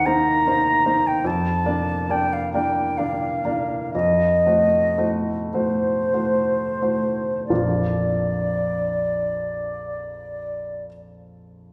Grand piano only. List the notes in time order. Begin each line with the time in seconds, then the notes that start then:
Already playing: D#2 A#3 D#4 C5
0.06 A#3 D#4 C5
0.46 A#3 D#4 C5
0.85 A#3 D#4 C5
1.25 F2
1.65 A#3 D4 D5
2.09 A#3 D4 D5
2.54 A#3 D4 D5
2.98 A#3 D4 D5
3.45 A#3 D4 D5
3.95 F2
4.46 A3 F#4 C5
4.98 A3 F#4 C5
5.54 A3 F#4 C5
6.14 A3 F#4 C5
6.82 A3 F#4 C5
7.50 A#1 F2 F3 A#3 D4 F4